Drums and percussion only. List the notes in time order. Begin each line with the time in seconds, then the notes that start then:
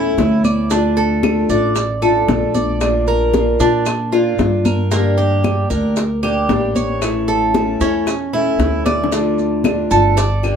0.18 high bongo, low bongo, high conga, maracas
0.44 high conga, claves, maracas
0.70 high bongo, high conga, maracas
0.97 high conga, maracas
1.23 high bongo, high conga, claves, maracas
1.49 high conga, maracas
1.76 high bongo, high conga, maracas
2.02 high conga, claves, maracas
2.28 high bongo, low bongo, high conga, maracas
2.55 high conga, maracas
2.81 high bongo, high conga, claves, maracas
3.07 high bongo, high conga, maracas
3.33 high bongo, high conga, maracas
3.60 high bongo, high conga, maracas
3.86 high bongo, high conga, claves, maracas
4.12 high bongo, high conga, maracas
4.39 high bongo, low bongo, high conga, maracas
4.65 high conga, claves, maracas
4.91 high bongo, high conga, maracas
5.18 high conga, maracas
5.44 high bongo, high conga, claves, maracas
5.70 high conga, maracas
5.96 high bongo, high conga, maracas
6.23 high conga, claves, maracas
6.49 high bongo, low bongo, high conga, maracas
6.75 high conga, maracas
7.02 high bongo, high conga, claves, maracas
7.28 high bongo, high conga, maracas
7.54 high bongo, high conga, maracas
7.81 high bongo, high conga, maracas
8.07 high bongo, high conga, claves, maracas
8.33 high bongo, high conga, maracas
8.59 high bongo, low bongo, high conga, maracas
8.86 high bongo, high conga, claves, maracas
9.04 low bongo
9.12 high bongo, high conga, maracas
9.38 high conga, maracas
9.64 high bongo, high conga, claves, maracas
9.91 high conga, maracas
10.17 high bongo, high conga, maracas
10.44 high conga, claves, maracas